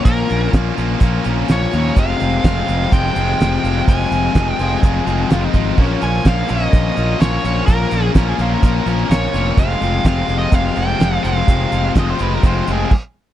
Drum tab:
CC |----------------|----------------|----------------|x---------------|
HH |x-x-x-x-x-x-x-x-|x-x-x-x-x-x-x-x-|x-x-x-x-x-x-x-x-|--x-x-x-x-x-x-x-|
SD |----o-------oo--|----o-------o---|-o--o-------o---|----o-------o---|
BD |o---o---o-------|o---o---o-------|o---o---o-----o-|o---o---o-------|

CC |----------------|----------------|------------x---|
HH |x-x-x-x-x-x-x-x-|x-x-x-x-x-x-x-x-|x-x-x-x-x-x-----|
SD |----o-------oo--|----o-------o---|----o-----------|
BD |o---o---o-------|o---o---o-------|o---o---o---o---|